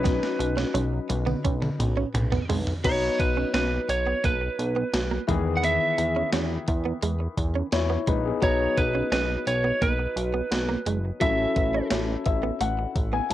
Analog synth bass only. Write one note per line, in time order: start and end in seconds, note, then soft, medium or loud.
0.00 0.20 B1 loud
0.40 0.65 B1 loud
0.75 1.00 B1 loud
1.10 1.35 B1 loud
1.45 1.70 B1 loud
1.79 2.05 B1 medium
2.14 2.39 B1 loud
2.49 2.74 B1 loud
2.84 3.09 B1 loud
3.19 3.44 B1 medium
3.54 3.79 B1 loud
3.89 4.14 B1 loud
4.24 4.49 B1 loud
4.59 4.84 B1 loud
4.93 5.19 B1 loud
5.28 5.79 E2 medium
5.98 6.23 E2 loud
6.33 6.58 E2 medium
6.68 6.93 E2 medium
7.03 7.28 E2 loud
7.37 7.63 E2 medium
7.72 7.98 E2 loud
8.07 8.32 A#1 medium
8.42 8.67 B1 loud
8.77 9.02 B1 medium
9.12 9.37 B1 loud
9.47 9.72 B1 loud
9.82 10.07 B1 loud
10.16 10.42 B1 loud
10.51 10.76 B1 medium
10.86 11.11 F#1 medium
11.21 11.46 A1 loud
11.56 11.81 A1 loud
11.91 12.16 A1 loud
12.26 12.51 A1 loud
12.61 12.86 A1 loud
12.95 13.21 A1 medium
13.30 13.34 A1 medium